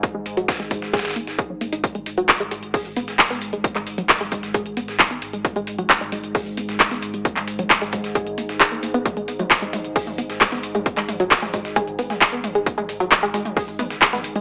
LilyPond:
<<
  \new Staff \with { instrumentName = "Synth arpeggio sound" } { \clef bass \time 4/4 \key gis \minor \tempo 4 = 133 r16 gis16 r16 fis16 r16 gis16 gis16 r16 gis'16 r16 ais16 r16 gis'16 fis16 ais16 dis'16 | r16 gis16 r16 fis16 r16 gis16 gis16 r16 gis'16 r16 b16 r16 gis16 b16 r16 gis16 | r16 gis16 r16 fis16 r16 gis16 gis16 r16 gis'16 r16 b16 r16 gis16 b16 r16 gis16 | r16 gis16 r16 fis16 r16 gis16 gis16 r16 gis'16 r16 b16 r16 gis16 b16 r16 gis16 |
r16 gis16 r16 fis16 r16 gis16 gis16 r16 gis'16 r16 ais16 r16 gis16 ais16 ais16 b16 | r16 gis16 r16 fis16 r16 gis16 gis16 r16 gis'16 r16 b16 r16 gis16 b16 r16 gis16 | r16 gis16 r16 fis16 r16 gis16 gis16 r16 gis'16 r16 b16 r16 gis16 b16 r16 gis16 | r16 gis16 r16 fis16 r16 gis16 gis16 r16 gis'16 r16 b16 r16 gis16 b16 r16 gis16 | }
  \new Staff \with { instrumentName = "Synth drone" } { \clef bass \time 4/4 \key gis \minor gis,1 | gis,1~ | gis,1~ | gis,1~ |
gis,1~ | gis,1~ | gis,1~ | gis,1 | }
  \new Staff \with { instrumentName = "Sub bass" } { \clef bass \time 4/4 \key gis \minor r16 gis,,16 gis,,16 gis,,16 r16 gis,,16 gis,,16 gis,,16 r16 gis,,16 gis,,16 gis,,16 r16 gis,,16 gis,,16 gis,,16 | r16 gis,,16 gis,,16 gis,,16 r16 gis,,16 gis,,16 gis,,16 r16 gis,,16 gis,,16 gis,,16 r16 gis,,16 gis,,16 gis,,16 | r16 gis,,16 gis,,16 gis,,16 r16 gis,,16 gis,,16 gis,,16 r16 gis,,16 gis,,16 gis,,16 r16 gis,,16 gis,,16 gis,,16 | r16 gis,,16 gis,,16 gis,,16 r16 gis,,16 gis,,16 gis,,16 r16 gis,,16 gis,,16 gis,,16 r16 gis,,16 gis,,16 gis,,16 |
r16 gis,,16 gis,,16 gis,,16 r16 gis,,16 gis,,16 gis,,16 r16 gis,,16 gis,,16 gis,,16 r16 gis,,16 gis,,16 gis,,16 | r16 gis,,16 gis,,16 gis,,16 r16 gis,,16 gis,,16 gis,,16 r16 gis,,16 gis,,16 gis,,16 r16 gis,,16 gis,,16 gis,,16 | r16 gis,,16 gis,,16 gis,,16 r16 gis,,16 gis,,16 gis,,16 r16 gis,,16 gis,,16 gis,,16 r16 gis,,16 gis,,16 gis,,16 | r16 gis,,16 gis,,16 gis,,16 r16 gis,,16 gis,,16 gis,,16 r16 gis,,16 gis,,16 gis,,16 r16 gis,,16 gis,,16 gis,,16 | }
  \new DrumStaff \with { instrumentName = "Drums" } \drummode { \time 4/4 <hh bd>8 <hh hho>16 hh16 <hh bd sn>16 sn16 <hh hho bd>16 sn16 <hh bd sn>32 <hh sn>32 <hh sn>32 <hh sn>32 <hh hho>16 <hho sn>16 <hh bd>8 <hh hho>16 hh16 | <hh bd>16 hh16 <hh hho>16 hh16 <hc hh bd sn>16 hh16 <hh hho>16 hh16 <hh hho bd>16 hh16 <hh hho>16 <hh sn>16 <hc hh hho bd sn>16 <hh sn>16 <hh hho>16 hh16 | <hh bd>16 <hc hh>16 <hh hho>16 hh16 <hc hh bd sn>16 <hh sn>16 <hh hho bd>16 <hh sn>16 <hh bd>16 hh16 <hh hho>16 <hho sn>16 <hc hh bd sn>16 hh16 <hh hho>16 hh16 | <hh bd>16 hh16 <hh hho>16 hh16 <hc hh bd sn>16 hh16 <hh hho>16 hh16 <hh hho bd>16 hh16 <hh hho>16 <hh sn>16 <hc hh hho bd sn>16 <hh sn>16 <hh hho>16 hh16 |
<hh bd>16 <hc hh>16 <hh hho>16 hh16 <hc hh bd sn>16 <hh sn>16 <hh hho bd>16 <hh sn>16 <hh bd>16 hh16 <hh hho>16 <hho sn>16 <hc hh bd sn>16 hh16 <hh hho>16 hh16 | <hh bd toml>16 hh16 <hh hho>16 <hh toml>16 <hc hh bd sn>16 hh16 <hh hho toml>16 hh16 <hh hho bd>16 <hh toml>16 <hh hho>16 <hh sn>16 <hc hh hho bd sn toml>16 <hh sn>16 <hh hho>16 <hh toml>16 | <hh bd>16 <hc hh>16 <hh hho toml>16 hh16 <hc hh bd sn>16 <hh sn toml>16 <hh hho bd>16 <hh sn>16 <hh bd toml>16 hh16 <hh hho>16 <hho sn toml>16 <hc hh bd sn>16 hh16 <hh hho toml>16 hh16 | <hh bd>16 <hh toml>16 <hh hho>16 hh16 <hc hh bd sn toml>16 hh16 <hh hho>16 <hh toml>16 <hh hho bd>16 hh16 <hh hho toml>16 <hh sn>16 <hc hh hho bd sn>16 <hh sn toml>16 <hh hho>16 hh16 | }
>>